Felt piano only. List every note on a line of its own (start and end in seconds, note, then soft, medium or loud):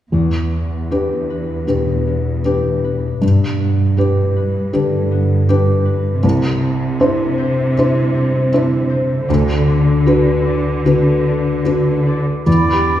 0.12 0.89 E2 soft
0.91 1.64 D4 soft
0.91 1.64 G4 soft
0.91 1.64 B4 soft
1.67 2.41 D4 soft
1.67 2.41 G4 soft
1.67 2.42 B4 soft
2.45 3.18 D4 soft
2.45 3.18 G4 soft
2.45 3.19 B4 soft
3.22 3.96 G2 soft
3.97 4.69 D4 soft
3.97 4.70 G4 soft
3.97 4.70 B4 soft
4.73 5.45 D4 soft
4.73 5.45 G4 soft
4.73 5.45 B4 soft
5.49 6.20 D4 soft
5.49 6.20 G4 soft
5.49 6.20 B4 soft
6.24 6.97 C2 soft
7.00 7.73 D4 soft
7.00 7.74 E4 soft
7.00 7.74 C5 soft
7.78 8.49 D4 soft
7.78 8.49 E4 soft
7.78 8.49 C5 soft
8.54 9.25 D4 soft
8.54 9.25 E4 soft
8.54 9.25 C5 soft
9.30 10.04 D2 soft
10.07 10.81 D4 soft
10.07 10.81 F#4 soft
10.07 10.82 B4 soft
10.86 11.62 D4 soft
10.86 11.62 F#4 soft
10.86 11.62 B4 soft
11.65 12.43 D4 soft
11.65 12.43 F#4 soft
11.65 12.43 B4 soft
12.47 13.00 E2 soft
12.73 13.00 G4 soft